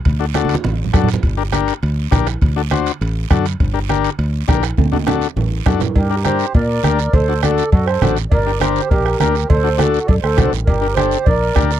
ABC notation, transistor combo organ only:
X:1
M:4/4
L:1/8
Q:1/4=203
K:Gm
V:1 name="Transistor combo organ"
z [D^FA] [DFA] z3 [DFA] z | z [DGB] [DGB] z3 [DGB] z | z [D^FA] [DFc] z3 [DFA] z | z [DGB] [DGB] z3 [DGB] z |
z [D^FA] [DFA] z3 [DFA] z | z [DGB] [DGB] z3 [DGB] z | z [D^FA] [DFA] z3 [DFA] z | z [DGB] [DGB] z3 [DGB] z |
z [D^FA] [DFA] z3 [DFA] z | z [DGB] [DGA] z3 [DGB] z |]